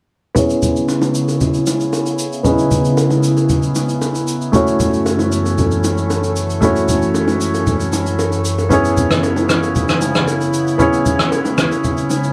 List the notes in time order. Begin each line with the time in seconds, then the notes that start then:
0.35 C#3 B3 C#4 E4 G#4, low conga, shaker
0.39 C#5
0.50 shaker
0.62 low conga, shaker
0.76 shaker
0.89 high bongo, shaker
1.02 low bongo, shaker
1.14 shaker
1.28 high bongo, shaker
1.40 low conga, shaker
1.54 shaker
1.66 low bongo, shaker
1.80 shaker
1.93 high bongo, shaker
2.06 shaker
2.19 shaker
2.32 shaker
2.43 B3 C#4 D#4 G#4, low conga, shaker
2.47 B4
2.52 E4
2.58 shaker
2.71 low conga, shaker
2.85 shaker
2.97 high bongo, shaker
3.10 low bongo, shaker
3.23 shaker
3.37 high bongo, shaker
3.49 low conga, shaker
3.62 shaker
3.75 low bongo, shaker
3.89 shaker
4.02 high bongo, shaker
4.15 shaker
4.27 shaker
4.41 shaker
4.52 F#2 E3 A3 C#4 E4 F#4 A4, low conga, shaker
4.56 C#5
4.67 shaker
4.80 low conga, shaker
4.93 shaker
5.06 high bongo, shaker
5.19 low bongo, shaker
5.32 shaker
5.46 high bongo, shaker
5.58 low conga, shaker
5.71 shaker
5.84 low bongo, shaker
5.97 shaker
6.10 high bongo, shaker
6.23 shaker
6.36 shaker
6.50 shaker
6.61 A3 C#4 E4 F#4, low conga, shaker
6.65 C#5
6.76 shaker
6.88 low conga, shaker
7.02 shaker
7.15 high bongo, shaker
7.28 low bongo, shaker
7.41 shaker
7.54 high bongo, shaker
7.67 low conga, shaker
7.80 shaker
7.93 low bongo, shaker
8.06 shaker
8.19 high bongo, shaker
8.32 shaker
8.45 shaker
8.59 high bongo, shaker
8.69 C#3 B3 C#4 E4 G#4, low conga, shaker
8.73 C#5
8.84 shaker
8.97 low conga, shaker
9.11 cross-stick, shaker
9.23 high bongo, shaker
9.36 low bongo, shaker
9.49 cross-stick, shaker
9.63 high bongo, shaker
9.75 low conga, shaker
9.89 cross-stick, shaker
10.01 low bongo, shaker
10.15 cross-stick, shaker
10.28 high bongo, shaker
10.41 shaker
10.53 shaker
10.67 shaker
10.78 B3 C#4 E4 G#4, low conga, shaker
10.82 C#5
10.93 shaker
11.06 low conga, shaker
11.19 cross-stick, shaker
11.32 high bongo, shaker
11.45 low bongo, shaker
11.58 cross-stick, shaker
11.72 high bongo, shaker
11.84 low conga, shaker
11.97 shaker
12.10 low bongo, shaker
12.23 shaker